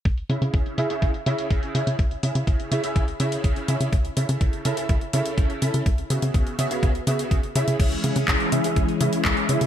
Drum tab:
CC |----------------|----------------|----------------|----------------|
HH |xxxxxxxxxxxxxxxx|xxxxxxxxxxxxxxxx|xxxxxxxxxxxxxxxx|xxxxxxxxxxxxxxxx|
CP |----------------|----------------|----------------|----------------|
BD |o---o---o---o---|o---o---o---o---|o---o---o---o---|o---o---o---o---|

CC |x---------------|
HH |xxxxxxxxxxxxxxxx|
CP |----x-------x---|
BD |o---o---o---o---|